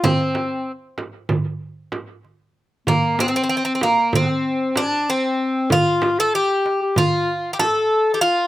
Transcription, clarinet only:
0.05 0.75 C4 medium
2.88 3.17 A#3 medium
3.18 3.62 C4 medium
3.65 3.84 C4 medium
3.82 4.16 A#3 medium
4.15 4.79 C4 medium
4.77 5.11 D4 medium
5.09 5.73 C4 medium
5.71 6.21 F4 medium
6.19 6.36 A4 medium
6.35 6.81 G4 medium
6.82 6.99 G4 medium
6.98 7.33 F4 medium
7.61 8.23 A4 medium
8.22 8.47 F4 medium

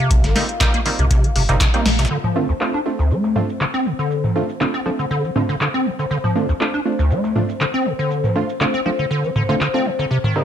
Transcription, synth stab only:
0.36 0.48 G3 medium
0.36 0.48 A#3 medium
0.36 0.48 C4 medium
0.36 0.48 D#4 loud
0.61 0.73 G3 loud
0.61 0.73 A#3 medium
0.61 0.73 C4 medium
0.61 0.73 D#4 loud
0.86 1.33 G3 medium
0.86 1.33 A#3 medium
0.86 1.33 C4 medium
0.86 1.33 D#4 medium
1.49 1.60 G3 loud
1.49 1.60 A#3 medium
1.49 1.60 C4 medium
1.49 1.60 D#4 loud
1.74 1.85 G3 medium
1.74 1.85 A#3 medium
1.74 1.85 C4 medium
1.74 1.85 D#4 medium
2.36 2.48 A3 medium
2.36 2.48 C4 medium
2.36 2.48 D4 medium
2.36 2.48 F4 medium
2.61 2.73 A3 medium
2.61 2.73 C4 medium
2.61 2.73 D4 medium
2.61 2.73 F4 loud
2.86 3.33 A3 medium
2.86 3.33 C4 medium
2.86 3.33 D4 medium
2.86 3.33 F4 medium
3.36 3.48 A3 medium
3.36 3.48 C4 medium
3.36 3.48 D4 medium
3.36 3.48 F4 loud
4.36 4.48 A3 medium
4.36 4.48 C4 medium
4.36 4.48 D4 medium
4.36 4.48 F4 medium
4.61 4.73 A3 medium
4.61 4.73 C4 medium
4.61 4.73 D4 medium
4.61 4.73 F4 loud
4.86 5.33 A3 medium
4.86 5.33 C4 medium
4.86 5.33 D4 medium
4.86 5.33 F4 medium
5.36 5.48 A3 medium
5.36 5.48 C4 medium
5.36 5.48 D4 medium
5.36 5.48 F4 loud
6.36 6.48 A3 medium
6.36 6.48 C4 medium
6.36 6.48 D4 medium
6.36 6.48 F4 medium
6.61 6.73 A3 loud
6.61 6.73 C4 medium
6.61 6.73 D4 medium
6.61 6.73 F4 loud
6.86 7.33 A3 medium
6.86 7.33 C4 medium
6.86 7.33 D4 medium
6.86 7.33 F4 medium
7.36 7.48 A3 medium
7.36 7.48 C4 medium
7.36 7.48 D4 medium
7.36 7.48 F4 medium
8.36 8.48 A3 medium
8.36 8.48 C4 medium
8.36 8.48 D4 medium
8.36 8.48 F4 loud
8.61 8.73 A3 medium
8.61 8.73 C4 medium
8.61 8.73 D4 medium
8.61 8.73 F4 loud
8.86 9.33 A3 medium
8.86 9.33 C4 medium
8.86 9.33 D4 medium
8.86 9.33 F4 medium
9.49 9.60 A3 loud
9.49 9.60 C4 medium
9.49 9.60 D4 medium
9.49 9.60 F4 loud
9.74 9.85 A3 medium
9.74 9.85 C4 medium
9.74 9.85 D4 medium
9.74 9.85 F4 medium
10.36 10.44 G3 medium
10.36 10.44 A#3 medium
10.36 10.44 C4 medium
10.36 10.44 D#4 loud

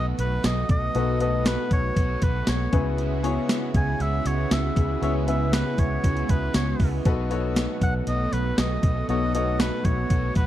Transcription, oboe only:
0.20 0.47 B4 loud
0.45 0.70 D#5 medium
0.71 1.18 D#5 loud
1.22 1.49 D#5 medium
1.47 1.72 B4 medium
1.73 2.25 C#5 loud
2.24 2.51 B4 medium
2.49 2.87 C#5 medium
3.77 4.03 G#5 loud
4.02 4.28 E5 loud
4.27 4.54 C#5 loud
4.52 5.03 E5 loud
5.03 5.14 E5 loud
5.29 5.56 E5 loud
5.54 5.81 B4 medium
5.80 6.32 C#5 loud
6.31 6.55 B4 medium
6.56 6.91 C#5 medium
7.83 7.94 F#5 loud
8.08 8.35 D#5 loud
8.33 8.60 B4 loud
8.59 9.09 D#5 loud
9.09 9.33 D#5 loud
9.35 9.62 D#5 loud
9.60 9.87 B4 medium
9.85 10.36 C#5 loud
10.36 10.47 B4 medium

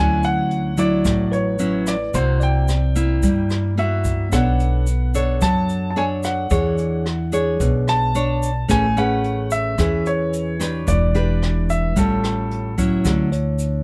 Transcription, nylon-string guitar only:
0.00 1.03 D3 medium
0.00 0.74 F#3 medium
0.00 0.74 C#4 medium
0.00 0.74 E4 medium
0.77 1.55 F#3 medium
0.77 1.55 E4 medium
1.05 2.11 A2 medium
1.59 1.94 F#3 medium
1.59 1.95 C#4 medium
1.59 1.95 E4 medium
2.14 3.20 C3 medium
2.14 2.68 A#3 medium
2.14 2.69 E4 soft
2.14 2.69 F#4 medium
2.95 3.73 A#3 medium
2.95 3.73 E4 medium
3.23 4.30 G3 medium
3.77 4.28 A#3 medium
3.77 4.28 E4 medium
3.77 4.28 F#4 medium
4.32 5.39 B3 medium
4.32 4.86 D4 medium
4.32 4.87 A4 medium
4.32 4.87 C#5 medium
5.14 5.92 D4 medium
5.14 5.92 A4 medium
5.14 5.92 C#5 medium
5.41 6.48 F#3 medium
5.96 6.46 D4 medium
5.96 6.46 A4 medium
5.96 6.47 C#5 medium
6.50 7.57 E3 medium
6.50 7.05 D4 medium
6.50 7.05 G#4 medium
6.50 7.05 C#5 medium
7.32 8.10 D4 medium
7.32 8.10 G#4 medium
7.32 8.10 C#5 medium
7.60 8.66 B2 medium
8.15 8.50 D4 medium
8.15 8.50 C#5 medium
8.68 9.75 A3 medium
8.68 8.85 C#4 medium
8.68 8.85 G#4 medium
8.68 8.85 B4 medium
8.97 9.74 C#4 medium
8.97 9.74 G#4 medium
8.97 9.75 B4 medium
9.78 10.85 E3 medium
9.78 10.56 C#4 medium
9.78 10.56 G#4 medium
9.78 10.56 B4 medium
10.59 11.10 D4 medium
10.59 11.10 G4 medium
10.59 11.10 B4 medium
10.87 11.93 E3 medium
11.15 11.92 D4 medium
11.15 11.92 G4 medium
11.15 11.92 B4 medium
11.96 13.03 A2 medium
11.96 12.74 G3 medium
11.96 12.74 C#4 medium
11.96 12.74 F4 medium
12.78 13.28 F#3 medium
12.78 13.28 C#4 medium
12.78 13.29 E4 medium
13.04 13.83 D3 medium

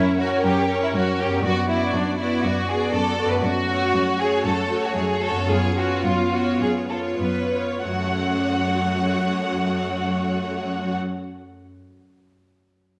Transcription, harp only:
0.00 1.24 F#2 soft
0.00 1.38 A#3 soft
0.00 1.41 C#4 soft
0.00 1.43 C#5 soft
1.25 3.24 F#2 soft
1.29 3.38 B3 soft
1.34 3.33 F#4 soft
1.38 3.43 D5 soft
3.25 5.29 F#2 soft
3.30 5.44 A3 soft
3.34 5.47 F#4 soft
3.39 5.43 C#5 soft
5.31 7.78 F#2 soft
5.35 7.80 B3 soft
5.40 7.82 F4 soft
5.44 8.11 C#5 soft
7.84 11.74 F#2 soft
7.91 11.61 F#3 soft
7.98 11.31 A3 soft
8.06 11.19 F#4 soft
8.12 11.25 C#5 soft
8.20 11.32 F#5 soft

